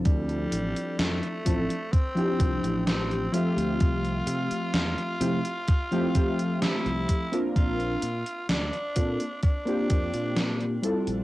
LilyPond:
<<
  \new Staff \with { instrumentName = "Synth keys" } { \time 4/4 \key bes \lydian \tempo 4 = 64 <f c' d' e' a'>4. <f c' d' e' a'>16 r8 <f c' d' e' g'>4~ <f c' d' e' g'>16 <f a c' g' e''>8~ | <f a c' g' e''>4. <f a c' e' g'>16 r8 <f a c' e' g'>16 <f a c' g' e''>4~ <f a c' g' e''>16 <bes c' d' f' bes'>16~ | <bes c' d' f' bes'>8 r4 <bes c' d' f' a'>16 r8 <bes c' d' f' g'>4~ <bes c' d' f' g'>16 <g c' e' f' a'>8 | }
  \new Staff \with { instrumentName = "Tenor saxophone" } { \time 4/4 \key bes \lydian g4 a4 c'4 c'8 f'8~ | f'2. e'4 | f'4 d'4 d'4. r8 | }
  \new Staff \with { instrumentName = "Fingered electric bass" } { \clef bass \time 4/4 \key bes \lydian d,8 a,,16 r16 f,16 r16 a,,16 r8. c,16 a,,8. r16 d,16 | c,8 c16 r16 e,16 r16 c16 r4. c,16 r8 | bes,,8 bes,16 r16 d,16 r16 bes,16 r8. f,16 bes,8. r16 bes,,16 | }
  \new DrumStaff \with { instrumentName = "Drums" } \drummode { \time 4/4 <hh bd>16 hh16 hh16 hh16 <hh sn>16 hh16 <hh bd>16 hh16 <hh bd>16 hh16 <hh bd>16 hh16 <hh sn>16 hh16 hh16 hh16 | <hh bd>16 hh16 hh16 hh16 <hh sn>16 hh16 hh16 hh16 <hh bd>16 hh16 <hh bd>16 hh16 <hh sn>16 hh16 <hh bd>16 hh16 | <hh bd>16 hh16 hh16 hh16 <hh sn>16 hh16 <hh bd>16 hh16 <hh bd>16 hh16 <hh bd>16 hh16 <hh sn>16 hh16 hh16 hh16 | }
>>